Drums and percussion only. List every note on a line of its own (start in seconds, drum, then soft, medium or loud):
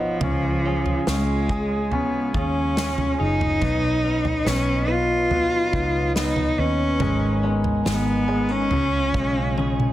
0.21 floor tom medium
0.86 floor tom soft
1.07 snare medium
1.49 kick medium
1.92 floor tom soft
2.34 kick medium
2.77 snare loud
2.98 floor tom medium
3.41 floor tom medium
3.62 kick medium
3.62 floor tom medium
4.25 floor tom soft
4.47 snare medium
5.31 floor tom soft
5.73 kick medium
6.16 snare medium
6.36 floor tom medium
7.00 floor tom medium
7.64 floor tom soft
7.86 snare loud
8.71 floor tom medium
9.14 kick medium
9.58 high tom soft
9.80 mid tom soft